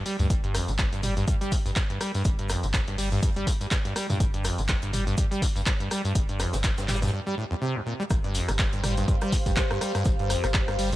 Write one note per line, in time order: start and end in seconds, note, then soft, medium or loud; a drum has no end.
0.06 0.17 G3 medium
0.06 open hi-hat medium
0.06 tambourine medium
0.19 0.27 D2 medium
0.19 0.28 G2 loud
0.19 closed hi-hat soft
0.19 tambourine soft
0.30 0.40 G1 loud
0.30 kick loud
0.30 closed hi-hat medium
0.30 tambourine soft
0.30 shaker medium
0.44 0.60 G1 medium
0.44 0.56 G2 medium
0.44 closed hi-hat soft
0.54 0.70 F2 loud
0.54 cross-stick medium
0.54 open hi-hat loud
0.54 tambourine medium
0.54 shaker medium
0.68 1.23 G1 medium
0.68 0.72 G3 medium
0.68 closed hi-hat soft
0.68 tambourine soft
0.78 0.83 G2 medium
0.78 kick loud
0.78 snare loud
0.78 clap loud
0.78 closed hi-hat medium
0.78 tambourine soft
0.78 shaker medium
0.93 1.01 G2 medium
0.93 closed hi-hat soft
1.03 1.14 G3 medium
1.03 mid tom medium
1.03 open hi-hat medium
1.03 tambourine medium
1.03 shaker medium
1.17 1.26 G2 loud
1.17 closed hi-hat soft
1.17 tambourine soft
1.28 1.35 G2 medium
1.28 kick loud
1.28 closed hi-hat medium
1.28 tambourine soft
1.28 shaker medium
1.41 1.53 G3 loud
1.41 closed hi-hat soft
1.52 1.56 F2 loud
1.52 kick medium
1.52 open hi-hat loud
1.52 tambourine medium
1.52 shaker medium
1.65 1.73 G1 medium
1.65 1.71 G2 medium
1.65 closed hi-hat soft
1.65 tambourine soft
1.76 1.81 G2 medium
1.76 kick loud
1.76 snare loud
1.76 clap loud
1.76 closed hi-hat medium
1.76 tambourine soft
1.76 shaker medium
1.90 1.99 G2 medium
1.90 closed hi-hat soft
2.01 2.12 G3 medium
2.01 cross-stick medium
2.01 open hi-hat medium
2.01 tambourine medium
2.01 shaker medium
2.14 2.23 G2 loud
2.14 closed hi-hat soft
2.14 tambourine soft
2.24 2.35 G1 medium
2.24 kick loud
2.24 closed hi-hat medium
2.24 tambourine soft
2.24 shaker medium
2.39 2.55 G1 loud
2.39 2.51 G2 medium
2.39 closed hi-hat soft
2.49 2.65 F2 loud
2.49 cross-stick medium
2.49 open hi-hat loud
2.49 tambourine medium
2.49 shaker medium
2.63 3.18 G1 medium
2.63 2.67 G3 medium
2.63 closed hi-hat soft
2.63 tambourine soft
2.74 2.78 G2 medium
2.74 kick loud
2.74 snare loud
2.74 clap loud
2.74 closed hi-hat medium
2.74 tambourine soft
2.74 shaker medium
2.87 2.96 G2 medium
2.87 snare soft
2.87 closed hi-hat soft
2.98 3.10 G3 medium
2.98 open hi-hat medium
2.98 tambourine medium
3.12 3.21 G2 loud
3.12 closed hi-hat soft
3.12 tambourine soft
3.22 kick loud
3.22 closed hi-hat medium
3.22 tambourine soft
3.22 shaker medium
3.36 3.44 G1 medium
3.36 3.48 G3 loud
3.36 closed hi-hat soft
3.47 3.51 F2 loud
3.47 kick medium
3.47 open hi-hat loud
3.47 tambourine medium
3.47 shaker medium
3.60 3.66 G2 medium
3.60 closed hi-hat soft
3.60 tambourine soft
3.71 3.76 G2 medium
3.71 kick loud
3.71 snare loud
3.71 clap loud
3.71 closed hi-hat medium
3.71 tambourine soft
3.71 shaker medium
3.85 3.94 G2 medium
3.85 snare soft
3.85 closed hi-hat soft
3.96 4.07 G3 medium
3.96 cross-stick medium
3.96 open hi-hat medium
3.96 tambourine medium
3.96 shaker medium
4.09 4.18 G2 loud
4.09 closed hi-hat soft
4.09 mid tom medium
4.09 tambourine soft
4.20 4.30 G1 loud
4.20 4.25 G2 medium
4.20 kick loud
4.20 closed hi-hat medium
4.20 tambourine soft
4.20 shaker medium
4.34 4.50 G1 medium
4.34 4.46 G2 medium
4.34 closed hi-hat soft
4.44 4.60 F2 loud
4.44 cross-stick medium
4.44 open hi-hat loud
4.44 tambourine medium
4.44 shaker medium
4.58 5.13 G1 medium
4.58 4.62 G3 medium
4.58 closed hi-hat soft
4.58 tambourine soft
4.68 4.73 G2 medium
4.68 kick loud
4.68 snare loud
4.68 clap loud
4.68 closed hi-hat medium
4.68 tambourine soft
4.68 shaker medium
4.82 4.91 G2 medium
4.82 closed hi-hat soft
4.93 5.05 G3 medium
4.93 mid tom medium
4.93 open hi-hat medium
4.93 tambourine medium
4.93 shaker medium
5.07 5.16 G2 loud
5.07 closed hi-hat soft
5.07 tambourine soft
5.17 kick loud
5.17 closed hi-hat loud
5.17 tambourine soft
5.17 shaker medium
5.31 5.43 G3 loud
5.31 closed hi-hat soft
5.42 5.47 F2 loud
5.42 kick medium
5.42 open hi-hat loud
5.42 tambourine medium
5.42 shaker medium
5.56 5.63 G1 medium
5.56 5.62 G2 medium
5.56 closed hi-hat soft
5.56 tambourine soft
5.66 5.71 G2 medium
5.66 kick loud
5.66 snare loud
5.66 clap loud
5.66 closed hi-hat loud
5.66 tambourine soft
5.66 shaker medium
5.80 5.89 G2 medium
5.80 closed hi-hat soft
5.91 6.02 G3 medium
5.91 cross-stick medium
5.91 open hi-hat medium
5.91 tambourine medium
5.91 shaker medium
6.04 6.13 G2 loud
6.04 closed hi-hat soft
6.04 tambourine soft
6.15 6.25 G1 loud
6.15 kick loud
6.15 closed hi-hat loud
6.15 tambourine soft
6.15 shaker loud
6.29 6.45 G1 medium
6.29 6.41 G2 medium
6.29 closed hi-hat soft
6.39 6.55 F2 loud
6.39 cross-stick medium
6.39 snare loud
6.39 open hi-hat loud
6.39 tambourine medium
6.39 shaker medium
6.53 7.08 G1 medium
6.53 6.57 G3 medium
6.53 snare loud
6.53 closed hi-hat soft
6.53 tambourine soft
6.53 shaker medium
6.64 6.69 G2 medium
6.64 kick loud
6.64 snare loud
6.64 clap loud
6.64 closed hi-hat loud
6.64 tambourine soft
6.64 shaker medium
6.78 6.87 G2 medium
6.78 snare loud
6.78 closed hi-hat soft
6.78 shaker medium
6.88 7.00 G3 medium
6.88 snare medium
6.88 clap medium
6.88 mid tom medium
6.88 open hi-hat medium
6.88 tambourine medium
6.88 shaker medium
6.95 snare medium
6.95 shaker medium
7.02 7.11 G2 loud
7.02 snare medium
7.02 closed hi-hat soft
7.02 mid tom medium
7.02 tambourine soft
7.02 shaker medium
7.07 snare medium
7.07 shaker medium
7.13 7.20 G2 medium
7.26 7.35 G3 loud
7.37 7.45 A2 medium
7.51 7.54 F2 loud
7.62 7.77 C3 loud
7.75 7.81 G2 medium
7.86 7.94 A#2 medium
8.00 8.03 G3 loud
8.10 8.20 G1 loud
8.10 8.15 G2 medium
8.10 10.96 G4 medium
8.10 kick loud
8.10 cross-stick medium
8.10 closed hi-hat medium
8.10 tambourine soft
8.10 shaker loud
8.24 8.41 G1 medium
8.24 8.36 G2 medium
8.24 closed hi-hat soft
8.34 8.50 F2 loud
8.34 open hi-hat loud
8.34 tambourine medium
8.34 shaker medium
8.47 9.03 G1 medium
8.47 8.52 G3 medium
8.47 10.96 C5 medium
8.47 cross-stick medium
8.47 closed hi-hat medium
8.47 tambourine soft
8.59 8.64 G2 medium
8.59 kick loud
8.59 snare loud
8.59 clap loud
8.59 closed hi-hat medium
8.59 tambourine soft
8.59 shaker medium
8.72 8.82 G2 medium
8.72 10.96 F5 medium
8.72 closed hi-hat soft
8.84 8.95 G3 medium
8.84 cross-stick medium
8.84 mid tom medium
8.84 open hi-hat medium
8.84 tambourine medium
8.84 shaker medium
8.97 9.06 G2 loud
8.97 closed hi-hat medium
8.97 tambourine soft
9.08 9.16 G2 medium
9.08 kick loud
9.08 closed hi-hat medium
9.08 tambourine soft
9.08 shaker medium
9.21 9.34 G3 loud
9.21 cross-stick medium
9.21 closed hi-hat soft
9.32 9.37 F2 loud
9.32 kick medium
9.32 open hi-hat loud
9.32 tambourine medium
9.32 shaker medium
9.46 9.54 G1 medium
9.46 9.52 G2 medium
9.46 kick medium
9.46 closed hi-hat medium
9.46 tambourine soft
9.56 9.61 G2 medium
9.56 kick loud
9.56 cross-stick medium
9.56 snare loud
9.56 clap loud
9.56 closed hi-hat medium
9.56 tambourine soft
9.56 shaker loud
9.70 9.79 G2 medium
9.70 cross-stick medium
9.70 closed hi-hat soft
9.81 9.92 G3 medium
9.81 cross-stick medium
9.81 open hi-hat loud
9.81 tambourine medium
9.81 shaker medium
9.95 10.04 G2 loud
9.95 cross-stick medium
9.95 closed hi-hat medium
9.95 tambourine soft
10.05 10.15 G1 medium
10.05 10.10 G2 medium
10.05 kick loud
10.05 closed hi-hat medium
10.05 tambourine soft
10.05 shaker medium
10.19 10.36 G1 loud
10.19 10.31 G2 medium
10.19 closed hi-hat soft
10.30 10.45 F2 loud
10.30 cross-stick medium
10.30 open hi-hat loud
10.30 tambourine medium
10.30 shaker medium
10.44 10.96 G1 medium
10.44 10.47 G3 medium
10.44 cross-stick medium
10.44 closed hi-hat medium
10.44 tambourine soft
10.54 10.59 G2 medium
10.54 kick loud
10.54 snare loud
10.54 clap loud
10.54 closed hi-hat medium
10.54 tambourine soft
10.54 shaker loud
10.68 10.77 G2 medium
10.68 cross-stick medium
10.68 snare soft
10.68 closed hi-hat soft
10.79 10.90 G3 medium
10.79 open hi-hat loud
10.79 open hi-hat medium
10.79 tambourine medium
10.92 10.96 G2 loud
10.92 closed hi-hat medium
10.92 tambourine soft